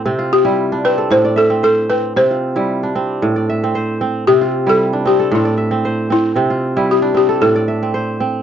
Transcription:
X:1
M:4/4
L:1/16
Q:1/4=114
K:C
V:1 name="Balafon"
z2 G4 B2 c2 A2 A2 B2 | c12 z4 | G3 A3 G2 E4 z2 E2- | E2 z2 G2 G2 A6 z2 |]
V:2 name="Kora"
C F2 E2 D2 A2 d e2 c3 z | C F2 E2 D3 z d e2 c3 z | C F2 E2 D2 A2 d e2 c3 z | C F2 E2 D2 A2 d e2 c3 z |]
V:3 name="Kora"
C,2 z G,2 z C2 A,,2 z C2 z C2 | C,2 z G,2 z C2 A,,2 z C2 z C2 | C,2 z G,2 z C2 A,,2 z C2 z C2 | C,2 z G,2 z C2 A,,2 z C2 z C2 |]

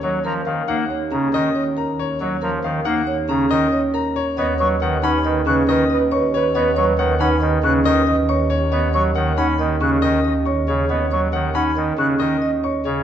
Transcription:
X:1
M:5/4
L:1/8
Q:1/4=138
K:Cblyd
V:1 name="Grand piano"
d z f g z b e z b d | d z f g z b e z b d | d z ^f =b z d' ^d z _d' _d | d z ^f =b z d' ^d z _d' _d |
d z ^f =b z d' ^d z _d' _d | d z ^f =b z d' ^d z _d' _d |]
V:2 name="Flute"
e b z f z3 e z2 | e b z f z3 e z2 | ^d _d' z ^f z ^f' z ^d z2 | ^d _d' z ^f z ^f' z ^d z2 |
^d _d' z ^f ^d ^f' z d z2 | ^d _d' z ^f ^d ^f' z d z2 |]
V:3 name="Marimba"
d B z E d D z d B z | d B z E d D z d B z | ^d _d z ^D ^d _D z ^d _d z | ^d _d z ^D ^d _D z ^d _d z |
^d _d z ^D ^d _D z ^d _d z | ^d _d z ^D ^d _D z ^d _d z |]
V:4 name="French horn"
z8 z2 | z8 z2 | =B B B B B B B B B B | =B B B B B B B B B z |
z8 z2 | z8 z2 |]
V:5 name="Pipe organ" clef=bass
G, F, E, B, z D, E, z3 | G, F, E, B, z D, E, z3 | =B, ^F, ^D, _D ^D, _D, ^D, z3 | =B, ^F, ^D, _D ^D, _D, ^D, z3 |
=B, ^F, ^D, _D ^D, _D, ^D, z2 _D, | =B, ^F, ^D, _D ^D, _D, ^D, z2 _D, |]
V:6 name="Double bass section" clef=bass
E,,8- E,,2- | E,,8- E,,2 | ^D,,8- D,,2- | ^D,,8- D,,2- |
^D,,8- D,,2- | ^D,,8- D,,2 |]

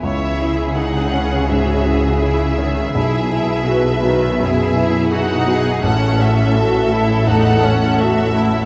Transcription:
X:1
M:4/4
L:1/8
Q:1/4=83
K:C#m
V:1 name="Violin section"
e2 f2 e2 e2- | e6 f2 | f e3 f2 e2 |]
V:2 name="Violin section"
c G6- G | G2 B2 G2 F G | A8 |]
V:3 name="Viola section"
E2 D C F2 E D, | E E F D, E E D2 | C2 F E D C F E |]
V:4 name="Grand piano"
C,, E G C G,, E G C | B,,, E G F, F,, E G F, | A,,, C A A, E,, C A A, |]
V:5 name="Cello section" clef=bass
C,8 | B,,8 | A,,8 |]
V:6 name="Double bass section" clef=bass
C,,8 | B,,,8 | A,,,8 |]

